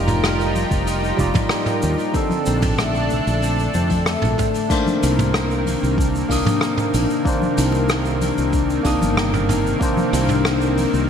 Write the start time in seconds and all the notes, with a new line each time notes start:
Already playing: F1 F3 G3 A#3 D#4 F4 G4 A#4
0.07 mid tom, open hi-hat, shaker
0.23 A#3, cross-stick, open hi-hat, shaker
0.39 open hi-hat, shaker
0.55 D#4, high conga, shaker
0.71 F1, kick, open hi-hat, shaker
0.86 D#4, open hi-hat, shaker
1.04 shaker
1.17 F1 G3 D#4 F4 D5, kick, low conga, shaker
1.34 kick, mid tom, open hi-hat, high bongo, high conga, shaker
1.49 A#3, cross-stick, open hi-hat, shaker
1.66 mid tom, open hi-hat, shaker
1.82 D#2 D#4, shaker
1.98 open hi-hat, shaker
2.13 D3 C4 D4 A4, kick, open hi-hat, shaker
2.30 open hi-hat, high conga, shaker
2.46 A#1 C4, shaker
2.62 kick, mid tom, open hi-hat, high bongo, shaker
2.78 A3, cross-stick, open hi-hat, shaker
2.94 open hi-hat, shaker
3.10 C4, high conga, low conga, shaker
3.27 A#1, open hi-hat, shaker
3.42 C4, open hi-hat, shaker
3.58 open hi-hat, shaker
3.74 F2 C4, high bongo, low conga, shaker
3.90 kick, open hi-hat, high conga, shaker
4.06 A3, cross-stick, open hi-hat, shaker
4.22 A#1, mid tom, open hi-hat, high bongo, shaker
4.38 C4, kick, mid tom, shaker
4.54 open hi-hat, shaker
4.69 C3 D#3 A#3 D4 C5, kick, crash, shaker
4.87 high conga, shaker
5.03 C2 D4, open hi-hat, shaker
5.19 mid tom, shaker
5.34 A#3, cross-stick, shaker
5.51 shaker
5.66 D4, open hi-hat, high conga, shaker
5.83 C2, shaker
5.98 D4, kick, shaker
6.15 shaker
6.29 C2 D#3 A#3 D4 D#6, kick, open hi-hat, low conga, shaker
6.45 mid tom, high bongo, high conga, shaker
6.61 A#3, cross-stick, shaker
6.77 mid tom, shaker
6.94 A#1 D4, open hi-hat, shaker
7.10 shaker
7.25 D#3 A#3 D4 C5, kick, shaker
7.42 high conga, shaker
7.57 C2 D4, open hi-hat, shaker
7.72 high bongo, shaker
7.89 A#3, cross-stick, shaker
8.05 shaker
8.21 D4, open hi-hat, high conga, shaker
8.38 C2, shaker
8.53 D4, kick, shaker
8.70 shaker
8.83 C2 D#3 A#3 D4 D#6, kick, open hi-hat, high bongo, low conga, shaker
9.01 G1, high conga, shaker
9.17 A#3, cross-stick, shaker
9.32 mid tom, high bongo, shaker
9.49 D4, mid tom, open hi-hat, shaker
9.67 shaker
9.80 D#3 A#3 C4 D4 C5, kick, shaker
9.97 high conga, shaker
10.13 C2 D4, open hi-hat, shaker
10.29 mid tom, shaker
10.45 A#3, cross-stick, shaker
10.61 shaker
10.77 D4, open hi-hat, high conga, shaker
10.94 C2, shaker